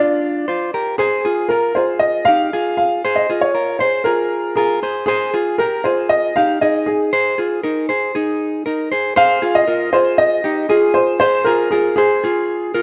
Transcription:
Already playing: clean electric guitar D4 F4, upright piano D5
0.48 clean electric guitar F4 C5
0.74 clean electric guitar G4 A#4
0.98 upright piano G#4, clean electric guitar G#4 C5
1.25 clean electric guitar F4 G#4
1.49 clean electric guitar F4 A#4, upright piano A#4
1.75 clean electric guitar F4 G#4, upright piano C5
1.99 upright piano D#5
2.25 clean electric guitar D#4 G4, upright piano F5
2.53 clean electric guitar F4 G#4
2.77 upright piano F5
3.05 clean electric guitar G#4 C5
3.16 upright piano D#5
3.30 clean electric guitar F4 G#4
3.41 upright piano C#5
3.55 clean electric guitar F4 A#4
3.79 clean electric guitar G#4 C5, upright piano C5
4.04 clean electric guitar F4 G#4, upright piano A#4
4.56 clean electric guitar F4 A#4, upright piano G#4
4.83 clean electric guitar G#4 C5
5.06 upright piano G#4, clean electric guitar G#4 C5
5.34 clean electric guitar F4 G#4
5.58 clean electric guitar G4 A#4, upright piano A#4
5.84 clean electric guitar F4 G#4, upright piano C5
6.09 upright piano D#5
6.36 clean electric guitar D#4 G4, upright piano F5
6.61 clean electric guitar D#4 G#4, upright piano D#5
6.86 upright piano G#4
7.13 clean electric guitar G#4 C5
7.38 clean electric guitar F4 G#4
7.63 clean electric guitar D#4 A#4
7.89 clean electric guitar G#4 C5
8.15 clean electric guitar D#4 G#4
8.66 clean electric guitar D#4 A#4
8.92 clean electric guitar G#4 C5
9.16 clean electric guitar G#4 C5, upright piano F5
9.42 clean electric guitar F4 G#4
9.55 upright piano D#5
9.67 clean electric guitar F4 A#4
9.93 clean electric guitar F4 G#4, upright piano C5
10.18 upright piano D#5
10.44 clean electric guitar D#4 G4
10.69 clean electric guitar F4 G#4, upright piano G#4
10.94 upright piano C5
11.20 clean electric guitar G#4 C5, upright piano C5
11.44 clean electric guitar F4 G#4, upright piano A#4
11.71 clean electric guitar F4 A#4, upright piano G#4
11.96 upright piano G#4, clean electric guitar G#4 C5
12.24 clean electric guitar F4 G#4
12.74 clean electric guitar F4 A#4

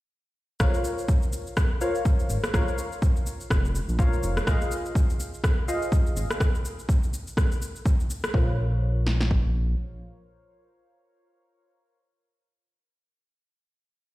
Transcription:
0.60 analog synth bass A#1, synth stab F4 A#4 C5 C#5 F5, kick, cross-stick, shaker
0.74 shaker
0.85 shaker
0.98 shaker
1.08 kick, shaker
1.22 shaker
1.33 shaker
1.47 shaker
1.57 kick, cross-stick, shaker
1.81 synth stab F4 A#4 C5 C#5 F5, shaker
1.95 shaker
2.05 kick, shaker
2.19 shaker
2.30 analog synth bass G#1, shaker
2.44 cross-stick, shaker
2.54 analog synth bass A#1, synth stab F4 A#4 C5 C#5 F5, kick, cross-stick, shaker
2.68 shaker
2.78 shaker
2.92 shaker
3.02 kick, shaker
3.16 shaker
3.26 shaker
3.41 shaker
3.50 analog synth bass F1, kick, cross-stick, shaker
3.65 shaker
3.75 shaker
3.88 analog synth bass A#1, shaker
3.99 synth stab F4 A#4 C5 C#5 F5, kick, shaker
4.13 shaker
4.23 analog synth bass F1, shaker
4.37 cross-stick, shaker
4.47 analog synth bass A#1, synth stab F4 G#4 C5 D#5 F5, kick, cross-stick, shaker
4.61 shaker
4.71 shaker
4.86 shaker
4.95 kick, shaker
5.10 shaker
5.20 shaker
5.34 shaker
5.44 kick, cross-stick, shaker
5.68 synth stab F4 G#4 C5 D#5 F5, shaker
5.82 shaker
5.92 kick, shaker
6.07 shaker
6.16 analog synth bass G#1, shaker
6.31 cross-stick, shaker
6.40 kick, cross-stick, shaker
6.55 shaker
6.65 shaker
6.79 shaker
6.89 kick, shaker
7.03 shaker
7.14 shaker
7.27 shaker
7.37 kick, cross-stick, shaker
7.52 shaker
7.62 shaker
7.76 shaker
7.86 kick, shaker
8.00 shaker
8.10 shaker
8.24 cross-stick, shaker
8.34 analog synth bass A#1, synth stab F4 A#4 C5 C#5 F5, kick
9.07 snare
9.21 snare
9.31 kick

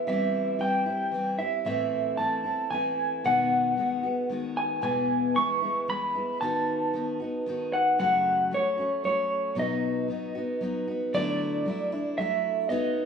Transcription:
0.07 steel-string acoustic guitar E3 G3 C4 E4, clean electric guitar E5
0.59 steel-string acoustic guitar E3 G3 C4 E4, clean electric guitar G5
0.86 steel-string acoustic guitar G3 C4 E4
1.12 steel-string acoustic guitar E3 G3 C4 E4
1.39 steel-string acoustic guitar G3 C4 E4, clean electric guitar E5
1.65 steel-string acoustic guitar A2 E3 A3 C4 E4, clean electric guitar E5
2.17 steel-string acoustic guitar E3 A3 C4 E4, clean electric guitar A5
2.44 steel-string acoustic guitar A3 C4 E4
2.70 steel-string acoustic guitar E3 A3 C4 E4, clean electric guitar G#5
3.24 steel-string acoustic guitar B2 D#3 G#3 B3 F#4, clean electric guitar F#5
3.77 steel-string acoustic guitar D#3 G#3 B3 F#4
4.03 steel-string acoustic guitar G#3 B3 F#4
4.29 steel-string acoustic guitar D#3 G#3 B3 F#4
4.57 clean electric guitar G#5
4.81 steel-string acoustic guitar E2 B2 E3 G#3 B3 E4, clean electric guitar G#5
5.35 steel-string acoustic guitar E3 G#3 B3 E4, clean electric guitar C#6
5.61 steel-string acoustic guitar E3 G#3 B3 E4
5.88 steel-string acoustic guitar E3 G#3 B3 E4, clean electric guitar B5
6.15 steel-string acoustic guitar E3 G#3 B3 E4
6.41 steel-string acoustic guitar D#3 B3 D#4 F#4, clean electric guitar A5
6.94 steel-string acoustic guitar D#3 B3 D#4 F#4
7.20 steel-string acoustic guitar B3 D#4 F#4
7.46 steel-string acoustic guitar D#3 B3 D#4 F#4
7.73 clean electric guitar F#5
7.99 steel-string acoustic guitar F#2 C#3 F#3 A3 C#4 F#4, clean electric guitar F#5
8.51 steel-string acoustic guitar F#3 A3 C#4 F#4, clean electric guitar C#5
8.77 steel-string acoustic guitar F#3 A3 C#4 F#4
9.04 steel-string acoustic guitar F#3 A3 C#4 F#4, clean electric guitar C#5
9.55 steel-string acoustic guitar B2 F#3 B3 D#4 F#4
9.59 clean electric guitar D#5
10.08 steel-string acoustic guitar F#3 B3 D#4 F#4
10.35 steel-string acoustic guitar B3 D#4 F#4
10.61 steel-string acoustic guitar F#3 B3 D#4 F#4
10.88 steel-string acoustic guitar B3 D#4 F#4
11.14 steel-string acoustic guitar D3 F#3 A3 D4 E4, clean electric guitar D5
11.66 steel-string acoustic guitar F#3 A3 D4 E4
11.92 steel-string acoustic guitar A3 D4 E4
12.18 steel-string acoustic guitar F#3 A3 D4 E4, clean electric guitar E5
12.69 steel-string acoustic guitar B3 D#4 F#4 C#5, clean electric guitar D#5

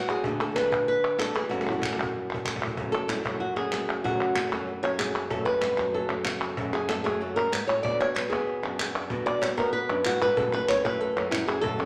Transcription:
Already playing: nylon-string guitar A2 F#4
0.09 nylon-string guitar G3 C#4 E4 G#4, clap
0.24 nylon-string guitar D3 A3 D4 F#4, cajon bass
0.40 nylon-string guitar A4, clap
0.47 nylon-string guitar D3 A3 D4 F#4
0.51 nylon-string guitar D3 A3 D4 F#4
0.56 nylon-string guitar D3 A3 D4 F#4 B4, cajon slap, clap
0.71 nylon-string guitar A3 D4 F#4, cajon bass, clap
0.88 nylon-string guitar B4, muted nylon-string guitar stroke
1.04 clap
1.19 nylon-string guitar D3 A3 D4 F#4 A4, cajon slap, clap
1.35 nylon-string guitar E3 A3 D4 F#4 G#4, clap
1.49 nylon-string guitar F#2 C#3 E3 A3 C#4 F#4, cajon slap
1.61 cajon slap
1.67 nylon-string guitar A3 E4, clap
1.72 nylon-string guitar C#3 E3 A3 C#4 F#4, cajon slap
1.78 nylon-string guitar C#3 E3 A3 C#4 F#4, cajon bass
1.83 nylon-string guitar F#2 C#3 E3 A3 C#4 F#4, clap
1.93 cajon slap
1.98 nylon-string guitar E3 A3 C#4 F#4, clap
2.03 cajon bass
2.13 muted nylon-string guitar stroke
2.30 cajon bass, clap
2.45 nylon-string guitar E3 A3 C#4 F#4, cajon bass, clap
2.56 cajon bass
2.61 nylon-string guitar E3 A3 C#4 F#4, clap
2.67 cajon bass
2.77 nylon-string guitar F#2 C#3 F#3 A3 C#4 F#4, cajon bass
2.92 nylon-string guitar A4, clap
3.08 nylon-string guitar C#3 F#3 A3 C#4 E4 F#4, cajon slap, clap
3.16 nylon-string guitar C#3 F#3 A3 C#4 F#4
3.20 nylon-string guitar C#3 F#3 A3 C#4 F#4
3.24 nylon-string guitar F#2 C#3 F#3 A3 C#4 F#4, cajon bass, clap
3.40 nylon-string guitar F#4, muted nylon-string guitar stroke
3.56 nylon-string guitar C#3 F#3 A3 C#4 F#4 G#4, clap
3.72 nylon-string guitar F#3 A3 C#4 F#4, cajon slap, clap
3.89 clap
4.04 nylon-string guitar F#2 C#3 F#3 A3 C#4 F#4, cajon bass
4.21 cajon slap, clap
4.36 nylon-string guitar C#3 F#3 A3 C#4 F#4, cajon slap, clap
4.43 nylon-string guitar C#3 F#3 A3 C#4 F#4
4.47 nylon-string guitar C#3 F#3 A3 C#4 F#4
4.52 nylon-string guitar F#2 C#3 F#3 A3 C#4 F#4, cajon bass, cajon slap, clap
4.68 muted nylon-string guitar stroke
4.83 nylon-string guitar F#2 F#3 A3 C#4 F#4 C#5, clap
4.98 nylon-string guitar F#3 A3 C#4 F#4 G#4, cajon slap, clap
5.15 clap
5.30 nylon-string guitar F#2 C#3 F#3 A3 C#4 F#4 A4, cajon bass
5.45 nylon-string guitar F#3 F#4 B4, cajon slap, clap
5.61 muted nylon-string guitar stroke, cajon slap, clap
5.77 nylon-string guitar F#3 A3 C#4 F#4, cajon bass, cajon slap, clap
5.93 nylon-string guitar F#2 C#3 F#3 A3 C#4 F#4 A4
6.08 nylon-string guitar C#3 F#3 A3 C#4 F#4, clap
6.25 muted nylon-string guitar stroke, cajon slap, clap
6.41 nylon-string guitar F#3 A3 C#4 F#4, clap
6.57 nylon-string guitar F#2 C#3 F#3 A3 C#4 F#4, cajon bass
6.73 nylon-string guitar F#3 A3 C#4 F#4 G#4, cajon slap, clap
6.89 nylon-string guitar A4, muted nylon-string guitar stroke, cajon slap, clap
7.04 nylon-string guitar F#3 A3 C#4 F#4 G#4, cajon bass, cajon slap, clap
7.20 nylon-string guitar F#2 C#3 F#3 A3 C#4 F#4 A4
7.36 nylon-string guitar F#2 F#3 A3 C#4 F#4 A#4
7.52 nylon-string guitar G#2 B4, muted nylon-string guitar stroke, cajon slap, clap
7.67 nylon-string guitar A2 F#3 A3 C#4 F#4 C#5
7.83 nylon-string guitar B2 D3 B3 D4 F#4 D5, cajon bass
8.00 nylon-string guitar C#5, cajon slap
8.14 nylon-string guitar D3 B3 D4 F#4 B4, cajon slap, clap
8.30 nylon-string guitar B3 D4 F#4 G#4, cajon bass, cajon slap, clap
8.47 muted nylon-string guitar stroke
8.63 nylon-string guitar F#2 B3 D4 F#4, clap
8.79 nylon-string guitar B3 D4 F#4, cajon slap, clap
8.95 clap
9.10 nylon-string guitar B2 D3 B3 D4 F#4, cajon bass
9.26 nylon-string guitar D5, cajon slap, clap
9.41 nylon-string guitar D3 B3 D4 F#4 C#5, cajon slap, clap
9.57 nylon-string guitar B3 D4 F#4 A#4, cajon bass, cajon slap
9.73 nylon-string guitar B4, muted nylon-string guitar stroke
9.89 nylon-string guitar F#2 B3 D4 F#4, clap
10.05 nylon-string guitar A2 B3 D4 F#4, cajon slap, clap
10.21 nylon-string guitar G#2 B4, cajon slap, clap
10.36 nylon-string guitar F#2 C#3 E3 A3 C#4 F#4 A4, cajon bass
10.53 nylon-string guitar E3 A3 C#4 F#4 B4, cajon slap
10.68 nylon-string guitar E3 A3 C#4 F#4 C#5, cajon slap, clap
10.85 nylon-string guitar E3 A3 C#4 F#4 B4, cajon bass, clap
11.00 nylon-string guitar A4, muted nylon-string guitar stroke
11.16 nylon-string guitar F#2 E3 A3 C#4 F#4, clap
11.31 nylon-string guitar E4, cajon slap, clap
11.47 nylon-string guitar E3 A3 C#4 F#4 G#4, clap
11.61 nylon-string guitar F#2 C#3 E3 A3 C#4 F#4 A4, cajon bass
11.78 nylon-string guitar E3 A3 C#4 F#4, cajon slap, clap

